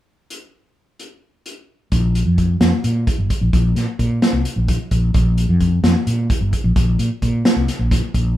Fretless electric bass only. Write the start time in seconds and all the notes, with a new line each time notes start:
1.92 A#1
2.26 F2
2.60 F2
2.84 A#2
3.18 G1
3.41 A#1
3.53 A#1
3.75 A#2
3.99 A#2
4.33 C2
4.56 A#1
4.92 A#1
5.15 A#1
5.49 F2
5.83 F2
6.07 A#2
6.41 G1
6.64 A#1
6.76 A#1
6.99 A#2
7.22 A#2
7.56 C2
7.79 A#1
8.14 A#1